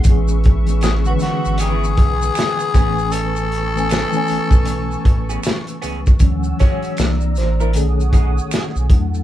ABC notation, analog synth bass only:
X:1
M:4/4
L:1/16
Q:"Swing 16ths" 1/4=78
K:A
V:1 name="Analog synth bass" clef=bass
A,,,6 G,,, G,,,3 B,,,2 z2 A,,,2- | A,,,6 B,,, B,,,3 A,,,2 z2 C,,2 | D,,2 z2 =C,,2 A,,,2 B,,,4 z B,,, E,,2 |]